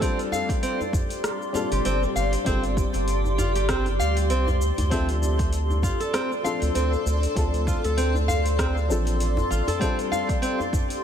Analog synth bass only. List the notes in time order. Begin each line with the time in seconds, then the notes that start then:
1.72 G1
1.85 G1
2.16 G1
2.46 G1
2.94 G1
4.00 D2
4.30 C2
4.61 D2
4.78 D2
6.62 D2
6.75 D2
7.06 D2
7.36 D2
7.85 D2
8.90 A1
9.51 A1